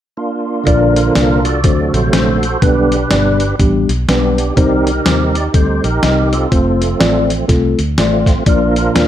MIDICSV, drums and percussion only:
0, 0, Header, 1, 2, 480
1, 0, Start_track
1, 0, Key_signature, -2, "major"
1, 0, Tempo, 487013
1, 659, Time_signature, 4, 2, 24, 8
1, 8946, End_track
2, 0, Start_track
2, 0, Title_t, "Drums"
2, 657, Note_on_c, 9, 42, 70
2, 658, Note_on_c, 9, 36, 96
2, 756, Note_off_c, 9, 42, 0
2, 757, Note_off_c, 9, 36, 0
2, 950, Note_on_c, 9, 42, 70
2, 1049, Note_off_c, 9, 42, 0
2, 1138, Note_on_c, 9, 38, 101
2, 1142, Note_on_c, 9, 42, 78
2, 1237, Note_off_c, 9, 38, 0
2, 1240, Note_off_c, 9, 42, 0
2, 1429, Note_on_c, 9, 42, 63
2, 1528, Note_off_c, 9, 42, 0
2, 1614, Note_on_c, 9, 42, 79
2, 1618, Note_on_c, 9, 36, 103
2, 1713, Note_off_c, 9, 42, 0
2, 1716, Note_off_c, 9, 36, 0
2, 1913, Note_on_c, 9, 42, 60
2, 2011, Note_off_c, 9, 42, 0
2, 2100, Note_on_c, 9, 38, 102
2, 2100, Note_on_c, 9, 42, 81
2, 2198, Note_off_c, 9, 38, 0
2, 2199, Note_off_c, 9, 42, 0
2, 2395, Note_on_c, 9, 42, 60
2, 2493, Note_off_c, 9, 42, 0
2, 2583, Note_on_c, 9, 42, 77
2, 2584, Note_on_c, 9, 36, 103
2, 2682, Note_off_c, 9, 36, 0
2, 2682, Note_off_c, 9, 42, 0
2, 2877, Note_on_c, 9, 42, 69
2, 2975, Note_off_c, 9, 42, 0
2, 3061, Note_on_c, 9, 38, 107
2, 3065, Note_on_c, 9, 42, 72
2, 3160, Note_off_c, 9, 38, 0
2, 3164, Note_off_c, 9, 42, 0
2, 3350, Note_on_c, 9, 42, 64
2, 3449, Note_off_c, 9, 42, 0
2, 3543, Note_on_c, 9, 42, 78
2, 3544, Note_on_c, 9, 36, 100
2, 3642, Note_off_c, 9, 36, 0
2, 3642, Note_off_c, 9, 42, 0
2, 3837, Note_on_c, 9, 42, 65
2, 3935, Note_off_c, 9, 42, 0
2, 4027, Note_on_c, 9, 38, 100
2, 4028, Note_on_c, 9, 42, 76
2, 4126, Note_off_c, 9, 38, 0
2, 4126, Note_off_c, 9, 42, 0
2, 4320, Note_on_c, 9, 42, 65
2, 4418, Note_off_c, 9, 42, 0
2, 4504, Note_on_c, 9, 42, 72
2, 4506, Note_on_c, 9, 36, 106
2, 4603, Note_off_c, 9, 42, 0
2, 4604, Note_off_c, 9, 36, 0
2, 4798, Note_on_c, 9, 42, 66
2, 4897, Note_off_c, 9, 42, 0
2, 4985, Note_on_c, 9, 38, 111
2, 4988, Note_on_c, 9, 42, 80
2, 5083, Note_off_c, 9, 38, 0
2, 5087, Note_off_c, 9, 42, 0
2, 5277, Note_on_c, 9, 42, 61
2, 5375, Note_off_c, 9, 42, 0
2, 5461, Note_on_c, 9, 42, 82
2, 5462, Note_on_c, 9, 36, 105
2, 5560, Note_off_c, 9, 42, 0
2, 5561, Note_off_c, 9, 36, 0
2, 5757, Note_on_c, 9, 42, 61
2, 5855, Note_off_c, 9, 42, 0
2, 5941, Note_on_c, 9, 38, 104
2, 5941, Note_on_c, 9, 42, 87
2, 6040, Note_off_c, 9, 38, 0
2, 6040, Note_off_c, 9, 42, 0
2, 6236, Note_on_c, 9, 42, 63
2, 6335, Note_off_c, 9, 42, 0
2, 6425, Note_on_c, 9, 36, 105
2, 6425, Note_on_c, 9, 42, 75
2, 6523, Note_off_c, 9, 36, 0
2, 6523, Note_off_c, 9, 42, 0
2, 6718, Note_on_c, 9, 42, 67
2, 6816, Note_off_c, 9, 42, 0
2, 6905, Note_on_c, 9, 38, 104
2, 6908, Note_on_c, 9, 42, 74
2, 7003, Note_off_c, 9, 38, 0
2, 7007, Note_off_c, 9, 42, 0
2, 7197, Note_on_c, 9, 42, 65
2, 7296, Note_off_c, 9, 42, 0
2, 7383, Note_on_c, 9, 38, 32
2, 7383, Note_on_c, 9, 42, 78
2, 7384, Note_on_c, 9, 36, 97
2, 7481, Note_off_c, 9, 38, 0
2, 7482, Note_off_c, 9, 36, 0
2, 7482, Note_off_c, 9, 42, 0
2, 7674, Note_on_c, 9, 42, 64
2, 7773, Note_off_c, 9, 42, 0
2, 7864, Note_on_c, 9, 38, 101
2, 7864, Note_on_c, 9, 42, 73
2, 7962, Note_off_c, 9, 38, 0
2, 7963, Note_off_c, 9, 42, 0
2, 8145, Note_on_c, 9, 36, 77
2, 8148, Note_on_c, 9, 38, 31
2, 8153, Note_on_c, 9, 42, 60
2, 8243, Note_off_c, 9, 36, 0
2, 8246, Note_off_c, 9, 38, 0
2, 8251, Note_off_c, 9, 42, 0
2, 8341, Note_on_c, 9, 42, 78
2, 8343, Note_on_c, 9, 36, 102
2, 8440, Note_off_c, 9, 42, 0
2, 8442, Note_off_c, 9, 36, 0
2, 8637, Note_on_c, 9, 42, 67
2, 8735, Note_off_c, 9, 42, 0
2, 8827, Note_on_c, 9, 38, 106
2, 8830, Note_on_c, 9, 42, 78
2, 8925, Note_off_c, 9, 38, 0
2, 8929, Note_off_c, 9, 42, 0
2, 8946, End_track
0, 0, End_of_file